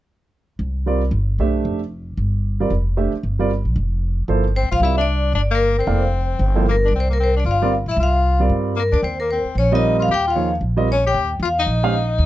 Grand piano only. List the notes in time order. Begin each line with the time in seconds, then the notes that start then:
0.86 G3 C4 F4 A#4 D5
1.40 A3 D4 G4 C5 E5
2.60 G3 C4 F4 A#4 D5
2.97 A3 D4 G4 C5 E5
3.39 G3 C4 F4 A#4 D5
4.28 F3 A#3 E4 A4 C5
4.82 G3 C4 F4 A#4 D5
5.87 A#3 E4 A4 D5 F5
6.55 F3 A#3 E4 A4 C5
7.62 G3 C4 F4 A#4 D5
8.40 G3 C4 F4 A#4 D5
9.72 G3 C4 F4 A#4 D#5
10.35 F3 A#3 D#4 G#4 C#5
10.77 G3 C4 F4 A#4 D#5
11.83 G#3 C#4 G4 C5 F5